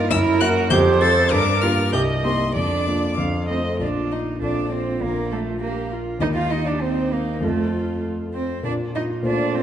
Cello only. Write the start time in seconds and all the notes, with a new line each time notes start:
Already playing: F4
0.12 E4
0.41 F#4
0.72 G4
1.01 A4
1.32 D4
1.63 F4
1.93 G4
2.25 C4
2.56 D4
3.51 C4
3.81 D4
4.12 D#4
4.43 D4
4.72 C4
5.02 A#3
5.32 A3
5.62 A#3
6.22 D#4
6.36 F4
6.51 D#4
6.67 D4
6.81 C4
7.12 A#3
7.43 A3
8.34 C4
8.65 D4
8.95 D#4
9.26 D4
9.55 C4